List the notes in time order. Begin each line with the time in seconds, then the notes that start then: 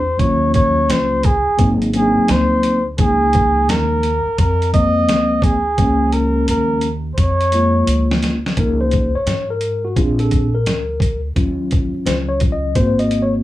Already playing: E2 C5
0.18 D#2 F#3 A#3 C#4 F4 C#5, kick, closed hi-hat
0.54 C#5, kick, closed hi-hat
0.89 C#2 C5, snare, closed hi-hat
1.23 G#4, kick, closed hi-hat
1.47 muted upright bass stroke
1.58 G#1 F#3 A#3 C4 D#4, kick, closed hi-hat
1.82 closed hi-hat
1.93 F#3 A#3 C4 D4 G#4, closed hi-hat
2.02 D#4
2.17 muted upright bass stroke
2.28 D2 C5, snare, closed hi-hat
2.63 closed hi-hat
2.98 C#2 F3 G#3 A#3 D#4 G#4, kick, closed hi-hat
3.33 kick, closed hi-hat
3.68 D#2 A#4, snare, closed hi-hat
4.03 closed hi-hat
4.26 muted upright bass stroke
4.38 F2 A#4, kick, closed hi-hat
4.62 closed hi-hat
4.73 F3 G#3 A#3 C4 D#5, kick, closed hi-hat
5.08 D2, snare, closed hi-hat
5.42 G#4, kick, closed hi-hat
5.78 C#2 F3 G#3 A#3 C#4, kick, closed hi-hat
6.12 A#4, closed hi-hat
6.48 D#2 A#4, closed hi-hat
6.81 closed hi-hat
7.14 F2 C5, closed hi-hat
7.18 C#5, kick
7.41 closed hi-hat
7.52 F3 G#3 A#3 F4, closed hi-hat
7.87 D2, closed hi-hat
8.11 snare
8.23 snare, closed hi-hat
8.46 snare
8.57 C#2 F3 A#3 D#4 A#4, kick, closed hi-hat
8.81 C5
8.91 kick, closed hi-hat
9.15 C#5, muted upright bass stroke
9.26 G#2, snare, closed hi-hat
9.50 A#4
9.61 closed hi-hat
9.85 F#4
9.96 A#1 C4 D4 F4 G#4, kick, closed hi-hat
10.19 A4, closed hi-hat
10.31 kick, closed hi-hat
10.55 A#4
10.66 D2, snare, closed hi-hat
11.00 kick, closed hi-hat
11.36 D#2 F#3 C#4 F4, kick, closed hi-hat
11.71 kick, closed hi-hat
11.94 muted upright bass stroke
12.06 C#2 C5, snare, closed hi-hat
12.29 C#5
12.40 kick, closed hi-hat
12.52 D#5
12.75 G#1 A#3 C4 F#4 C5, kick, closed hi-hat
12.99 D#5, closed hi-hat
13.11 closed hi-hat
13.22 C#5